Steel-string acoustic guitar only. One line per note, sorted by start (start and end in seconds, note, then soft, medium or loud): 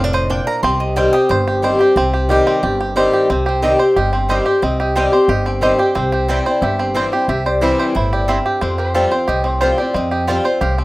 0.00 0.28 A2 medium
0.30 0.62 A#2 medium
0.63 1.26 C3 medium
0.96 1.12 D#3 loud
0.96 1.13 G3 medium
0.96 1.13 C4 loud
0.96 1.11 G4 loud
1.13 1.30 C4 medium
1.13 1.29 G4 medium
1.29 1.93 G2 loud
1.62 1.79 D#3 medium
1.62 1.79 G3 medium
1.62 1.79 C4 medium
1.62 1.77 G4 loud
1.79 1.96 C4 medium
1.79 1.95 G4 medium
1.96 2.59 C3 medium
2.29 2.61 D#3 medium
2.29 2.61 G3 medium
2.29 2.62 C4 loud
2.29 2.62 G4 loud
2.63 3.26 G2 loud
2.96 3.28 D#3 loud
2.96 3.28 G3 loud
2.96 3.28 C4 loud
2.96 3.28 G4 loud
3.30 3.93 C3 medium
3.62 3.79 D#3 medium
3.62 3.79 G3 medium
3.62 3.79 C4 loud
3.62 3.78 G4 medium
3.80 3.96 C4 soft
3.80 3.95 G4 medium
3.97 4.60 G2 medium
4.29 4.45 D#3 medium
4.29 4.46 G3 medium
4.29 4.46 C4 medium
4.29 4.45 G4 medium
4.46 4.63 C4 soft
4.46 4.62 G4 medium
4.62 5.26 C3 medium
4.96 5.12 D#3 medium
4.96 5.12 G3 loud
4.96 5.13 C4 loud
4.96 5.11 G4 loud
5.12 5.29 C4 medium
5.12 5.28 G4 medium
5.29 5.92 G2 medium
5.61 5.78 D#3 medium
5.61 5.78 G3 medium
5.61 5.79 C4 medium
5.61 5.77 G4 medium
5.78 5.96 C4 soft
5.78 5.95 G4 medium
5.95 6.59 C3 medium
6.28 6.45 E3 medium
6.28 6.45 G3 medium
6.28 6.46 C4 loud
6.28 6.45 E4 loud
6.46 6.63 C4 medium
6.46 6.62 E4 medium
6.62 7.25 G2 medium
6.95 7.11 E3 medium
6.95 7.12 G3 medium
6.95 7.12 C4 medium
6.95 7.11 E4 medium
7.12 7.29 C4 soft
7.12 7.28 E4 medium
7.29 7.92 C3 medium
7.61 7.93 E3 medium
7.61 7.94 G3 medium
7.61 7.94 C4 loud
7.61 7.94 E4 loud
7.95 8.27 A2 medium
8.28 8.60 G2 medium
8.62 9.25 F2 medium
8.94 9.11 F3 loud
8.94 9.11 G3 medium
8.94 9.11 C4 loud
8.94 9.10 F4 loud
9.11 9.28 C4 soft
9.11 9.27 F4 medium
9.29 9.91 A2 medium
9.62 9.77 F3 medium
9.62 9.78 G3 medium
9.62 9.78 C4 medium
9.62 9.77 F4 loud
9.79 9.95 C4 soft
9.79 9.94 F4 medium
9.96 10.58 F2 medium
10.28 10.44 F3 medium
10.28 10.44 G3 loud
10.28 10.45 C4 loud
10.28 10.43 F4 loud
10.45 10.61 C4 medium
10.45 10.60 F4 medium
10.61 10.84 A2 medium